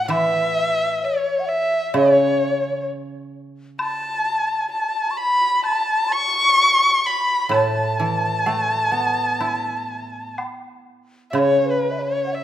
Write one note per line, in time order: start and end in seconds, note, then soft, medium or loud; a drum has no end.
0.00 1.02 A2 medium
0.00 0.11 F#5 loud
0.04 0.13 F#5 medium
0.08 2.86 E3 medium
0.08 1.06 E5 loud
0.08 0.76 E5 medium
0.08 high woodblock medium
1.03 1.41 C#5 medium
1.03 1.50 C#5 medium
1.39 1.48 F#5 soft
1.46 1.96 E5 medium
1.46 1.94 E5 medium
1.94 4.70 C#3 medium
1.94 2.87 C#5 medium
1.94 2.84 C#5 medium
1.94 high woodblock soft
3.79 4.67 A5 medium
3.79 high woodblock medium
4.71 5.12 A5 medium
4.71 5.19 A5 medium
5.11 5.19 C#6 medium
5.17 5.64 B5 loud
5.17 5.64 B5 medium
5.62 6.12 A5 medium
5.62 6.14 A5 loud
5.62 high woodblock soft
6.11 7.07 C#6 loud
6.11 7.08 C#6 loud
7.06 7.55 B5 medium
7.06 7.56 B5 loud
7.49 10.37 A2 medium
7.49 high woodblock medium
7.54 10.40 A5 medium
8.00 9.89 E3 soft
8.46 10.39 A3 medium
8.46 low woodblock soft
8.92 10.87 B3 soft
9.40 11.36 E4 soft
9.40 high woodblock soft
10.38 high woodblock soft
10.38 low woodblock soft
11.31 12.44 C#3 medium
11.31 11.40 E5 medium
11.35 11.67 C#5 medium
11.35 11.72 C#5 medium
11.35 high woodblock soft
11.66 11.93 B4 medium
11.71 12.03 B4 medium
11.91 12.00 E5 soft
11.99 12.24 C#5 medium
11.99 12.36 C#5 medium
12.26 12.34 F#5 medium
12.32 12.44 E5 loud
12.32 12.44 E5 medium